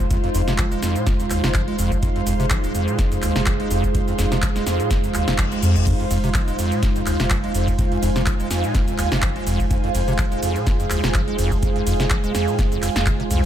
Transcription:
Already playing: F1 G#3 D#4 F4 C5 F5 C6
0.11 F2, kick, closed hi-hat, shaker
0.24 F2, closed hi-hat
0.35 F1 F2, open hi-hat, shaker
0.48 C3, snare, closed hi-hat, shaker
0.58 F3, kick, clap, closed hi-hat, shaker
0.72 D#1 G#3, closed hi-hat, shaker
0.83 F2, snare, open hi-hat, shaker
0.96 A#2, closed hi-hat, shaker
1.07 F1 F2, kick, snare, closed hi-hat, shaker
1.20 F2, closed hi-hat, shaker
1.30 D#2, clap, open hi-hat, shaker
1.44 F1 C3, snare, closed hi-hat, shaker
1.54 F3, kick, clap, closed hi-hat, shaker
1.68 G#3, closed hi-hat
1.79 F1 F2, open hi-hat, shaker
1.92 D#2, kick, closed hi-hat, shaker
2.03 F2 G#4, kick, closed hi-hat, shaker
2.16 F2, closed hi-hat
2.27 F1 F2, open hi-hat, shaker
2.40 C3, closed hi-hat, shaker
2.50 F3, kick, clap, closed hi-hat, shaker
2.64 D#1 G#3, closed hi-hat, shaker
2.75 F2, open hi-hat, shaker
2.88 A#2, closed hi-hat, shaker
2.99 F1 F2, kick, snare, closed hi-hat, shaker
3.12 F2, closed hi-hat, shaker
3.22 D#2, clap, open hi-hat, shaker
3.36 F1 C3, snare, closed hi-hat, shaker
3.46 F3, kick, clap, closed hi-hat, shaker
3.60 G#3, closed hi-hat
3.71 F1 F2, open hi-hat, shaker
3.84 D#2, kick, closed hi-hat, shaker
3.95 F2, kick, closed hi-hat, shaker
4.08 F2, closed hi-hat, shaker
4.19 F1 F2, snare, open hi-hat, shaker
4.32 C3, snare, closed hi-hat, shaker
4.42 F3, kick, clap, closed hi-hat, shaker
4.56 D#1 G#3, snare, closed hi-hat, shaker
4.67 F2, snare, open hi-hat, shaker
4.80 A#2, closed hi-hat, shaker
4.91 F1 F2, kick, snare, closed hi-hat, reverse cymbal, shaker
5.04 F2, closed hi-hat, shaker
5.14 D#2, clap, open hi-hat, shaker
5.28 F1 C3, snare, closed hi-hat, shaker
5.38 F3, kick, clap, closed hi-hat, shaker
5.52 G#3, closed hi-hat, shaker
5.63 F2, open hi-hat, shaker
5.76 D#2, kick, closed hi-hat, shaker
5.87 F2 F4, kick, closed hi-hat, crash, shaker
6.00 F2, closed hi-hat
6.11 F1 F2, open hi-hat, ride, shaker
6.24 C3, closed hi-hat, shaker
6.34 F3, kick, clap, closed hi-hat, shaker
6.48 D#1 G#3, closed hi-hat, shaker
6.59 F2, open hi-hat, ride, shaker
6.69 A#2 G#5, closed hi-hat, shaker
6.83 F1 F2, kick, snare, closed hi-hat, shaker
6.96 F2, closed hi-hat, shaker
7.06 D#2, clap, open hi-hat, ride, shaker
7.20 F1 C3, snare, closed hi-hat, shaker
7.30 F3, kick, clap, closed hi-hat, shaker
7.44 G#3, closed hi-hat
7.55 F1 F2, open hi-hat, ride, shaker
7.68 D#2, kick, closed hi-hat, shaker
7.79 F2, kick, closed hi-hat, shaker
7.92 F2, closed hi-hat
8.03 F1 F2, open hi-hat, ride, shaker
8.16 C3, snare, closed hi-hat, shaker
8.26 F3, kick, clap, closed hi-hat, shaker
8.40 D#1 G#3, closed hi-hat, shaker
8.51 F2, snare, open hi-hat, ride, shaker
8.64 A#2, closed hi-hat, shaker
8.75 F1 F2, kick, snare, closed hi-hat, shaker
8.88 F2, closed hi-hat, shaker
8.98 D#2, clap, open hi-hat, ride, shaker
9.12 F1 C3, snare, closed hi-hat, shaker
9.22 F3, kick, clap, closed hi-hat, shaker
9.36 G#3, closed hi-hat
9.47 F1 F2, open hi-hat, ride, shaker
9.60 D#2, kick, closed hi-hat, shaker
9.71 F2 G#4, kick, closed hi-hat, shaker
9.84 F2, closed hi-hat
9.95 F1 F2, open hi-hat, ride, shaker
10.08 C3, closed hi-hat, shaker
10.18 F3, kick, clap, closed hi-hat, shaker
10.32 D#1 G#3, closed hi-hat, shaker
10.43 F2, open hi-hat, ride, shaker
10.56 A#2, closed hi-hat, shaker
10.67 F1 F2, kick, snare, closed hi-hat, shaker
10.80 F2, closed hi-hat, shaker
10.90 D#2, clap, open hi-hat, ride, shaker
11.04 F1 C3, snare, closed hi-hat, shaker
11.14 F3, kick, clap, closed hi-hat, shaker
11.28 G#3, closed hi-hat
11.39 F1 F2, open hi-hat, ride, shaker
11.52 D#2, kick, closed hi-hat, shaker
11.63 F2, kick, closed hi-hat, shaker
11.76 F2, closed hi-hat
11.87 F1 F2, open hi-hat, ride, shaker
12.00 C3, snare, closed hi-hat, shaker
12.10 F3, kick, clap, closed hi-hat, shaker
12.24 D#1 G#3, closed hi-hat, shaker
12.35 F2, snare, open hi-hat, ride, shaker
12.48 A#2, closed hi-hat, shaker
12.59 F1 F2, kick, snare, closed hi-hat, shaker
12.72 F2, closed hi-hat, shaker
12.82 F2, clap, open hi-hat, ride, shaker
12.96 F1 F2, snare, closed hi-hat, shaker
13.06 D#3, kick, clap, closed hi-hat, shaker
13.20 C3, closed hi-hat
13.31 C2 F2, open hi-hat, ride, shaker

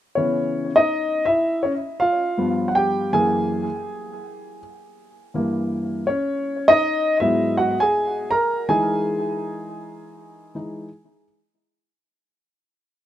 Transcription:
0.15 C#3 E3 B3 C#4 C#5
0.76 D#4 D#5
1.26 E4 E5
1.63 C#4 C#5
2.00 F4 F5
2.37 G2 F3 B3
2.68 F#5
2.75 G4 G5
3.13 F#2 E3 A#3 G#4 G#5
5.34 G2 E3 A#3
6.07 C#4 C#5
6.68 D#4 D#5
7.20 G#2 F#3 B3 E4 E5
7.57 F#4 F#5
7.80 G#4 G#5
8.31 A#4 A#5
8.69 E3 G#3 D#4 G#4 G#5
10.55 E3 G#3 D#4

